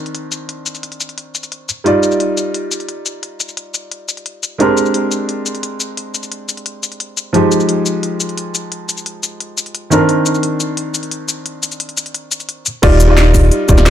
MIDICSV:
0, 0, Header, 1, 4, 480
1, 0, Start_track
1, 0, Key_signature, -3, "major"
1, 0, Tempo, 342857
1, 682, Time_signature, 4, 2, 24, 8
1, 19460, End_track
2, 0, Start_track
2, 0, Title_t, "Felt piano"
2, 0, Program_c, 0, 0
2, 0, Note_on_c, 0, 51, 74
2, 0, Note_on_c, 0, 60, 69
2, 0, Note_on_c, 0, 62, 66
2, 0, Note_on_c, 0, 70, 83
2, 2323, Note_off_c, 0, 51, 0
2, 2329, Note_off_c, 0, 60, 0
2, 2336, Note_off_c, 0, 62, 0
2, 2343, Note_off_c, 0, 70, 0
2, 2578, Note_on_c, 0, 55, 73
2, 2592, Note_on_c, 0, 63, 64
2, 2606, Note_on_c, 0, 65, 64
2, 2620, Note_on_c, 0, 74, 78
2, 6401, Note_off_c, 0, 55, 0
2, 6408, Note_off_c, 0, 63, 0
2, 6415, Note_off_c, 0, 65, 0
2, 6418, Note_on_c, 0, 56, 72
2, 6422, Note_off_c, 0, 74, 0
2, 6428, Note_on_c, 0, 60, 66
2, 6438, Note_on_c, 0, 62, 65
2, 6448, Note_on_c, 0, 67, 67
2, 6460, Note_on_c, 0, 70, 79
2, 10241, Note_off_c, 0, 56, 0
2, 10246, Note_off_c, 0, 60, 0
2, 10251, Note_off_c, 0, 62, 0
2, 10256, Note_off_c, 0, 67, 0
2, 10259, Note_on_c, 0, 53, 70
2, 10262, Note_off_c, 0, 70, 0
2, 10273, Note_on_c, 0, 56, 66
2, 10286, Note_on_c, 0, 63, 64
2, 10301, Note_on_c, 0, 67, 77
2, 13842, Note_off_c, 0, 53, 0
2, 13849, Note_off_c, 0, 56, 0
2, 13855, Note_off_c, 0, 63, 0
2, 13862, Note_off_c, 0, 67, 0
2, 13863, Note_on_c, 0, 51, 73
2, 13879, Note_on_c, 0, 60, 67
2, 13891, Note_on_c, 0, 62, 68
2, 13906, Note_on_c, 0, 70, 81
2, 17684, Note_off_c, 0, 51, 0
2, 17691, Note_off_c, 0, 60, 0
2, 17698, Note_off_c, 0, 62, 0
2, 17705, Note_off_c, 0, 70, 0
2, 17952, Note_on_c, 0, 55, 103
2, 17958, Note_on_c, 0, 63, 93
2, 17966, Note_on_c, 0, 65, 95
2, 17971, Note_on_c, 0, 74, 109
2, 18269, Note_off_c, 0, 55, 0
2, 18272, Note_off_c, 0, 63, 0
2, 18276, Note_off_c, 0, 65, 0
2, 18279, Note_off_c, 0, 74, 0
2, 18304, Note_on_c, 0, 55, 96
2, 18317, Note_on_c, 0, 63, 92
2, 18332, Note_on_c, 0, 65, 88
2, 18346, Note_on_c, 0, 74, 103
2, 19124, Note_off_c, 0, 55, 0
2, 19131, Note_off_c, 0, 63, 0
2, 19138, Note_off_c, 0, 65, 0
2, 19145, Note_off_c, 0, 74, 0
2, 19154, Note_on_c, 0, 55, 77
2, 19158, Note_on_c, 0, 63, 75
2, 19165, Note_on_c, 0, 65, 72
2, 19173, Note_on_c, 0, 74, 84
2, 19460, Note_off_c, 0, 55, 0
2, 19460, Note_off_c, 0, 63, 0
2, 19460, Note_off_c, 0, 65, 0
2, 19460, Note_off_c, 0, 74, 0
2, 19460, End_track
3, 0, Start_track
3, 0, Title_t, "Sub bass"
3, 0, Program_c, 1, 38
3, 17964, Note_on_c, 1, 27, 102
3, 18904, Note_off_c, 1, 27, 0
3, 19164, Note_on_c, 1, 27, 88
3, 19460, Note_off_c, 1, 27, 0
3, 19460, End_track
4, 0, Start_track
4, 0, Title_t, "Drums"
4, 84, Note_on_c, 9, 42, 36
4, 204, Note_off_c, 9, 42, 0
4, 204, Note_on_c, 9, 42, 87
4, 344, Note_off_c, 9, 42, 0
4, 444, Note_on_c, 9, 42, 64
4, 444, Note_on_c, 9, 69, 57
4, 584, Note_off_c, 9, 42, 0
4, 584, Note_off_c, 9, 69, 0
4, 685, Note_on_c, 9, 42, 95
4, 825, Note_off_c, 9, 42, 0
4, 925, Note_on_c, 9, 42, 62
4, 925, Note_on_c, 9, 69, 56
4, 1047, Note_off_c, 9, 42, 0
4, 1047, Note_off_c, 9, 69, 0
4, 1047, Note_on_c, 9, 42, 38
4, 1047, Note_on_c, 9, 69, 27
4, 1165, Note_off_c, 9, 42, 0
4, 1165, Note_on_c, 9, 42, 92
4, 1187, Note_off_c, 9, 69, 0
4, 1285, Note_off_c, 9, 42, 0
4, 1285, Note_on_c, 9, 42, 37
4, 1407, Note_off_c, 9, 42, 0
4, 1407, Note_on_c, 9, 42, 64
4, 1407, Note_on_c, 9, 69, 58
4, 1527, Note_off_c, 9, 42, 0
4, 1527, Note_on_c, 9, 42, 37
4, 1547, Note_off_c, 9, 69, 0
4, 1647, Note_off_c, 9, 42, 0
4, 1647, Note_on_c, 9, 42, 90
4, 1787, Note_off_c, 9, 42, 0
4, 1888, Note_on_c, 9, 42, 65
4, 1888, Note_on_c, 9, 69, 56
4, 2006, Note_off_c, 9, 42, 0
4, 2006, Note_off_c, 9, 69, 0
4, 2006, Note_on_c, 9, 42, 36
4, 2006, Note_on_c, 9, 69, 26
4, 2126, Note_off_c, 9, 42, 0
4, 2126, Note_on_c, 9, 42, 85
4, 2146, Note_off_c, 9, 69, 0
4, 2266, Note_off_c, 9, 42, 0
4, 2365, Note_on_c, 9, 42, 65
4, 2365, Note_on_c, 9, 69, 60
4, 2505, Note_off_c, 9, 42, 0
4, 2505, Note_off_c, 9, 69, 0
4, 2604, Note_on_c, 9, 42, 93
4, 2744, Note_off_c, 9, 42, 0
4, 2843, Note_on_c, 9, 42, 64
4, 2843, Note_on_c, 9, 69, 53
4, 2962, Note_off_c, 9, 69, 0
4, 2962, Note_on_c, 9, 69, 27
4, 2983, Note_off_c, 9, 42, 0
4, 3082, Note_on_c, 9, 42, 87
4, 3102, Note_off_c, 9, 69, 0
4, 3222, Note_off_c, 9, 42, 0
4, 3323, Note_on_c, 9, 42, 65
4, 3323, Note_on_c, 9, 69, 54
4, 3463, Note_off_c, 9, 42, 0
4, 3463, Note_off_c, 9, 69, 0
4, 3562, Note_on_c, 9, 42, 90
4, 3702, Note_off_c, 9, 42, 0
4, 3801, Note_on_c, 9, 42, 65
4, 3801, Note_on_c, 9, 69, 59
4, 3921, Note_off_c, 9, 42, 0
4, 3921, Note_on_c, 9, 42, 37
4, 3941, Note_off_c, 9, 69, 0
4, 4040, Note_off_c, 9, 42, 0
4, 4040, Note_on_c, 9, 42, 88
4, 4180, Note_off_c, 9, 42, 0
4, 4282, Note_on_c, 9, 42, 64
4, 4282, Note_on_c, 9, 69, 55
4, 4422, Note_off_c, 9, 42, 0
4, 4422, Note_off_c, 9, 69, 0
4, 4520, Note_on_c, 9, 42, 90
4, 4660, Note_off_c, 9, 42, 0
4, 4762, Note_on_c, 9, 42, 62
4, 4762, Note_on_c, 9, 69, 55
4, 4881, Note_off_c, 9, 69, 0
4, 4881, Note_on_c, 9, 69, 25
4, 4902, Note_off_c, 9, 42, 0
4, 5000, Note_on_c, 9, 42, 83
4, 5021, Note_off_c, 9, 69, 0
4, 5140, Note_off_c, 9, 42, 0
4, 5240, Note_on_c, 9, 42, 61
4, 5240, Note_on_c, 9, 69, 55
4, 5380, Note_off_c, 9, 42, 0
4, 5380, Note_off_c, 9, 69, 0
4, 5481, Note_on_c, 9, 42, 89
4, 5621, Note_off_c, 9, 42, 0
4, 5721, Note_on_c, 9, 42, 63
4, 5721, Note_on_c, 9, 69, 53
4, 5842, Note_off_c, 9, 42, 0
4, 5842, Note_on_c, 9, 42, 35
4, 5861, Note_off_c, 9, 69, 0
4, 5961, Note_off_c, 9, 42, 0
4, 5961, Note_on_c, 9, 42, 85
4, 6101, Note_off_c, 9, 42, 0
4, 6204, Note_on_c, 9, 42, 62
4, 6204, Note_on_c, 9, 69, 55
4, 6344, Note_off_c, 9, 42, 0
4, 6344, Note_off_c, 9, 69, 0
4, 6441, Note_on_c, 9, 42, 89
4, 6581, Note_off_c, 9, 42, 0
4, 6683, Note_on_c, 9, 42, 61
4, 6683, Note_on_c, 9, 69, 54
4, 6801, Note_off_c, 9, 69, 0
4, 6801, Note_on_c, 9, 69, 25
4, 6823, Note_off_c, 9, 42, 0
4, 6920, Note_on_c, 9, 42, 83
4, 6941, Note_off_c, 9, 69, 0
4, 7060, Note_off_c, 9, 42, 0
4, 7161, Note_on_c, 9, 42, 61
4, 7161, Note_on_c, 9, 69, 53
4, 7301, Note_off_c, 9, 42, 0
4, 7301, Note_off_c, 9, 69, 0
4, 7404, Note_on_c, 9, 42, 87
4, 7544, Note_off_c, 9, 42, 0
4, 7644, Note_on_c, 9, 42, 59
4, 7644, Note_on_c, 9, 69, 54
4, 7765, Note_off_c, 9, 42, 0
4, 7765, Note_on_c, 9, 42, 34
4, 7784, Note_off_c, 9, 69, 0
4, 7885, Note_off_c, 9, 42, 0
4, 7885, Note_on_c, 9, 42, 83
4, 8025, Note_off_c, 9, 42, 0
4, 8122, Note_on_c, 9, 42, 63
4, 8122, Note_on_c, 9, 69, 54
4, 8262, Note_off_c, 9, 42, 0
4, 8262, Note_off_c, 9, 69, 0
4, 8364, Note_on_c, 9, 42, 87
4, 8504, Note_off_c, 9, 42, 0
4, 8604, Note_on_c, 9, 42, 59
4, 8604, Note_on_c, 9, 69, 53
4, 8723, Note_off_c, 9, 42, 0
4, 8723, Note_off_c, 9, 69, 0
4, 8723, Note_on_c, 9, 42, 33
4, 8723, Note_on_c, 9, 69, 26
4, 8842, Note_off_c, 9, 42, 0
4, 8842, Note_on_c, 9, 42, 86
4, 8863, Note_off_c, 9, 69, 0
4, 8982, Note_off_c, 9, 42, 0
4, 9082, Note_on_c, 9, 42, 59
4, 9082, Note_on_c, 9, 69, 53
4, 9204, Note_off_c, 9, 42, 0
4, 9204, Note_on_c, 9, 42, 32
4, 9222, Note_off_c, 9, 69, 0
4, 9321, Note_off_c, 9, 42, 0
4, 9321, Note_on_c, 9, 42, 82
4, 9461, Note_off_c, 9, 42, 0
4, 9564, Note_on_c, 9, 42, 59
4, 9564, Note_on_c, 9, 69, 53
4, 9684, Note_off_c, 9, 42, 0
4, 9684, Note_on_c, 9, 42, 33
4, 9704, Note_off_c, 9, 69, 0
4, 9802, Note_off_c, 9, 42, 0
4, 9802, Note_on_c, 9, 42, 81
4, 9942, Note_off_c, 9, 42, 0
4, 10042, Note_on_c, 9, 42, 57
4, 10042, Note_on_c, 9, 69, 53
4, 10182, Note_off_c, 9, 42, 0
4, 10182, Note_off_c, 9, 69, 0
4, 10280, Note_on_c, 9, 42, 85
4, 10420, Note_off_c, 9, 42, 0
4, 10523, Note_on_c, 9, 42, 58
4, 10523, Note_on_c, 9, 69, 57
4, 10644, Note_off_c, 9, 69, 0
4, 10644, Note_on_c, 9, 69, 26
4, 10663, Note_off_c, 9, 42, 0
4, 10762, Note_on_c, 9, 42, 83
4, 10784, Note_off_c, 9, 69, 0
4, 10902, Note_off_c, 9, 42, 0
4, 11002, Note_on_c, 9, 42, 58
4, 11002, Note_on_c, 9, 69, 55
4, 11142, Note_off_c, 9, 42, 0
4, 11142, Note_off_c, 9, 69, 0
4, 11244, Note_on_c, 9, 42, 85
4, 11384, Note_off_c, 9, 42, 0
4, 11484, Note_on_c, 9, 42, 60
4, 11484, Note_on_c, 9, 69, 59
4, 11607, Note_off_c, 9, 42, 0
4, 11607, Note_on_c, 9, 42, 33
4, 11624, Note_off_c, 9, 69, 0
4, 11726, Note_off_c, 9, 42, 0
4, 11726, Note_on_c, 9, 42, 78
4, 11866, Note_off_c, 9, 42, 0
4, 11966, Note_on_c, 9, 42, 61
4, 11966, Note_on_c, 9, 69, 57
4, 12106, Note_off_c, 9, 42, 0
4, 12106, Note_off_c, 9, 69, 0
4, 12204, Note_on_c, 9, 42, 88
4, 12344, Note_off_c, 9, 42, 0
4, 12445, Note_on_c, 9, 42, 61
4, 12445, Note_on_c, 9, 69, 56
4, 12564, Note_off_c, 9, 69, 0
4, 12564, Note_on_c, 9, 69, 28
4, 12585, Note_off_c, 9, 42, 0
4, 12685, Note_on_c, 9, 42, 90
4, 12704, Note_off_c, 9, 69, 0
4, 12825, Note_off_c, 9, 42, 0
4, 12925, Note_on_c, 9, 42, 63
4, 12925, Note_on_c, 9, 69, 59
4, 13065, Note_off_c, 9, 42, 0
4, 13065, Note_off_c, 9, 69, 0
4, 13167, Note_on_c, 9, 42, 86
4, 13307, Note_off_c, 9, 42, 0
4, 13407, Note_on_c, 9, 42, 59
4, 13407, Note_on_c, 9, 69, 58
4, 13525, Note_off_c, 9, 42, 0
4, 13525, Note_on_c, 9, 42, 33
4, 13547, Note_off_c, 9, 69, 0
4, 13644, Note_off_c, 9, 42, 0
4, 13644, Note_on_c, 9, 42, 82
4, 13784, Note_off_c, 9, 42, 0
4, 13885, Note_on_c, 9, 42, 61
4, 13885, Note_on_c, 9, 69, 57
4, 14025, Note_off_c, 9, 42, 0
4, 14025, Note_off_c, 9, 69, 0
4, 14124, Note_on_c, 9, 42, 89
4, 14264, Note_off_c, 9, 42, 0
4, 14362, Note_on_c, 9, 42, 63
4, 14362, Note_on_c, 9, 69, 59
4, 14485, Note_off_c, 9, 69, 0
4, 14485, Note_on_c, 9, 69, 27
4, 14502, Note_off_c, 9, 42, 0
4, 14604, Note_on_c, 9, 42, 90
4, 14625, Note_off_c, 9, 69, 0
4, 14744, Note_off_c, 9, 42, 0
4, 14842, Note_on_c, 9, 42, 66
4, 14842, Note_on_c, 9, 69, 58
4, 14982, Note_off_c, 9, 42, 0
4, 14982, Note_off_c, 9, 69, 0
4, 15081, Note_on_c, 9, 42, 90
4, 15221, Note_off_c, 9, 42, 0
4, 15321, Note_on_c, 9, 42, 66
4, 15321, Note_on_c, 9, 69, 59
4, 15440, Note_off_c, 9, 42, 0
4, 15440, Note_on_c, 9, 42, 36
4, 15461, Note_off_c, 9, 69, 0
4, 15560, Note_off_c, 9, 42, 0
4, 15560, Note_on_c, 9, 42, 88
4, 15700, Note_off_c, 9, 42, 0
4, 15800, Note_on_c, 9, 42, 67
4, 15800, Note_on_c, 9, 69, 61
4, 15940, Note_off_c, 9, 42, 0
4, 15940, Note_off_c, 9, 69, 0
4, 16039, Note_on_c, 9, 42, 92
4, 16179, Note_off_c, 9, 42, 0
4, 16280, Note_on_c, 9, 42, 64
4, 16280, Note_on_c, 9, 69, 59
4, 16403, Note_off_c, 9, 42, 0
4, 16403, Note_off_c, 9, 69, 0
4, 16403, Note_on_c, 9, 42, 37
4, 16403, Note_on_c, 9, 69, 28
4, 16520, Note_off_c, 9, 42, 0
4, 16520, Note_on_c, 9, 42, 96
4, 16543, Note_off_c, 9, 69, 0
4, 16644, Note_off_c, 9, 42, 0
4, 16644, Note_on_c, 9, 42, 37
4, 16762, Note_off_c, 9, 42, 0
4, 16762, Note_on_c, 9, 42, 66
4, 16762, Note_on_c, 9, 69, 58
4, 16883, Note_off_c, 9, 42, 0
4, 16883, Note_on_c, 9, 42, 38
4, 16902, Note_off_c, 9, 69, 0
4, 17003, Note_off_c, 9, 42, 0
4, 17003, Note_on_c, 9, 42, 92
4, 17143, Note_off_c, 9, 42, 0
4, 17241, Note_on_c, 9, 42, 63
4, 17241, Note_on_c, 9, 69, 59
4, 17362, Note_off_c, 9, 42, 0
4, 17362, Note_off_c, 9, 69, 0
4, 17362, Note_on_c, 9, 42, 36
4, 17362, Note_on_c, 9, 69, 27
4, 17482, Note_off_c, 9, 42, 0
4, 17482, Note_on_c, 9, 42, 91
4, 17502, Note_off_c, 9, 69, 0
4, 17622, Note_off_c, 9, 42, 0
4, 17723, Note_on_c, 9, 42, 65
4, 17723, Note_on_c, 9, 69, 58
4, 17863, Note_off_c, 9, 42, 0
4, 17863, Note_off_c, 9, 69, 0
4, 17961, Note_on_c, 9, 42, 96
4, 17961, Note_on_c, 9, 49, 104
4, 17963, Note_on_c, 9, 36, 121
4, 18101, Note_off_c, 9, 42, 0
4, 18101, Note_off_c, 9, 49, 0
4, 18103, Note_off_c, 9, 36, 0
4, 18202, Note_on_c, 9, 42, 67
4, 18202, Note_on_c, 9, 69, 62
4, 18342, Note_off_c, 9, 42, 0
4, 18342, Note_off_c, 9, 69, 0
4, 18442, Note_on_c, 9, 38, 116
4, 18442, Note_on_c, 9, 42, 99
4, 18582, Note_off_c, 9, 38, 0
4, 18582, Note_off_c, 9, 42, 0
4, 18681, Note_on_c, 9, 46, 73
4, 18681, Note_on_c, 9, 69, 61
4, 18683, Note_on_c, 9, 36, 62
4, 18821, Note_off_c, 9, 46, 0
4, 18821, Note_off_c, 9, 69, 0
4, 18823, Note_off_c, 9, 36, 0
4, 18921, Note_on_c, 9, 42, 96
4, 19061, Note_off_c, 9, 42, 0
4, 19162, Note_on_c, 9, 42, 69
4, 19162, Note_on_c, 9, 69, 62
4, 19163, Note_on_c, 9, 36, 107
4, 19285, Note_off_c, 9, 42, 0
4, 19285, Note_off_c, 9, 69, 0
4, 19285, Note_on_c, 9, 40, 58
4, 19285, Note_on_c, 9, 42, 39
4, 19285, Note_on_c, 9, 69, 28
4, 19303, Note_off_c, 9, 36, 0
4, 19403, Note_off_c, 9, 42, 0
4, 19403, Note_on_c, 9, 38, 117
4, 19403, Note_on_c, 9, 42, 92
4, 19425, Note_off_c, 9, 40, 0
4, 19425, Note_off_c, 9, 69, 0
4, 19460, Note_off_c, 9, 38, 0
4, 19460, Note_off_c, 9, 42, 0
4, 19460, End_track
0, 0, End_of_file